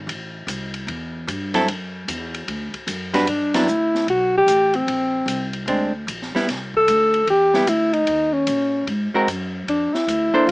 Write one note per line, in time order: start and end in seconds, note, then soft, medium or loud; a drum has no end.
0.07 0.46 A1 medium
0.07 ride medium
0.47 0.86 C2 medium
0.47 hi-hat pedal medium
0.47 ride medium
0.74 ride soft
0.87 1.26 E2 medium
0.87 ride medium
1.27 1.66 G2 medium
1.27 hi-hat pedal soft
1.27 ride medium
1.54 1.67 F#3 medium
1.54 1.67 C4 medium
1.54 1.67 E4 medium
1.54 1.67 A4 medium
1.54 snare soft
1.54 ride soft
1.68 2.07 F#2 medium
1.68 ride medium
2.08 2.47 E2 medium
2.08 hi-hat pedal medium
2.08 ride medium
2.34 ride soft
2.48 2.72 D2 medium
2.48 ride medium
2.74 muted upright bass stroke soft
2.74 kick soft
2.74 ride soft
2.87 3.26 F#2 medium
2.87 hi-hat pedal medium
2.87 ride medium
3.13 3.26 G3 medium
3.13 3.26 D4 medium
3.13 3.27 F#4 medium
3.13 3.27 B4 medium
3.13 snare soft
3.13 ride soft
3.27 3.66 G2 medium
3.27 3.57 D4 medium
3.27 ride medium
3.54 3.67 F#3 medium
3.54 3.67 B3 medium
3.54 3.67 D4 medium
3.54 4.08 E4 medium
3.54 snare medium
3.54 ride medium
3.67 4.06 D2 medium
3.67 hi-hat pedal medium
3.95 snare soft
4.07 4.46 B1 medium
4.07 4.33 F#4 medium
4.07 ride soft
4.37 4.77 G4 medium
4.46 4.86 A1 medium
4.46 hi-hat pedal medium
4.46 ride medium
4.74 5.55 C4 medium
4.74 ride soft
4.87 5.25 A#1 medium
4.87 ride medium
5.26 5.65 C2 medium
5.26 hi-hat pedal medium
5.26 ride medium
5.53 ride soft
5.66 6.06 D2 medium
5.66 5.91 G#3 medium
5.66 5.91 C4 medium
5.66 5.92 D4 medium
5.66 ride soft
6.07 6.32 A#1 medium
6.07 hi-hat pedal medium
6.07 ride medium
6.22 snare soft
6.34 6.47 G3 medium
6.34 6.47 B3 medium
6.34 6.48 E4 medium
6.34 muted upright bass stroke soft
6.34 snare soft
6.48 6.87 C2 medium
6.48 snare soft
6.48 ride medium
6.74 7.26 A4 loud
6.74 kick soft
6.88 7.27 D2 medium
6.88 hi-hat pedal soft
6.88 ride medium
7.14 ride soft
7.27 7.66 E2 medium
7.27 7.70 G4 loud
7.27 ride soft
7.54 7.67 G3 medium
7.54 7.67 B3 medium
7.54 7.67 E4 medium
7.54 snare soft
7.67 8.06 D2 medium
7.67 7.94 E4 medium
7.67 hi-hat pedal medium
7.67 ride medium
7.93 8.34 D#4 medium
7.93 ride soft
8.07 8.46 D#2 medium
8.07 ride medium
8.33 8.87 C#4 medium
8.47 8.86 A#2 medium
8.47 hi-hat pedal soft
8.47 ride medium
8.87 9.12 G#2 medium
8.87 ride soft
9.13 9.27 G#3 medium
9.13 9.27 C4 medium
9.13 9.27 F#4 medium
9.13 9.27 A#4 medium
9.13 muted upright bass stroke soft
9.27 9.67 F#2 medium
9.27 hi-hat pedal soft
9.27 ride medium
9.67 9.92 F2 medium
9.67 9.95 D4 medium
9.67 ride medium
9.93 10.49 E4 medium
9.93 muted upright bass stroke soft
9.93 snare soft
10.07 10.32 D2 medium
10.07 hi-hat pedal medium
10.07 ride medium
10.34 10.47 A#3 medium
10.34 10.47 D4 medium
10.34 10.47 A4 medium
10.34 10.47 C5 medium
10.34 muted upright bass stroke soft
10.47 10.52 C2 medium
10.47 10.52 F4 medium